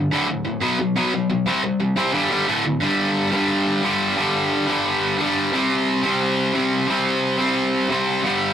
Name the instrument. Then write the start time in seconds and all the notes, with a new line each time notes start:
distorted electric guitar
0.11 D2 A2 D3
0.29 D2 A2
0.45 D2 A2
0.61 B2 F#3 B3
0.79 B2 F#3
0.96 B2 F#3 B3
1.14 B2 F#3
1.30 B2 F#3
1.46 C3 G3 C4
1.63 C3 G3
1.80 C3 G3
1.96 C3 G3 C4
2.13 G2 D3 G3
2.29 G2 D3 G3
2.47 D2 A2 D3
2.65 D2 A2
2.80 G2 D3 G3
3.32 D3 G3
3.36 G2
3.82 G2 D3 G3
4.16 G2 D3 G3
4.67 G2 D3 G3
5.17 G2 D3 G3
5.52 C3 G3 C4
6.02 C3 G3 C4
6.53 C3 G3 C4
6.87 C3 G3 C4
7.38 C3 G3 C4
7.89 C3 G3 C4
8.23 G2 D3 G3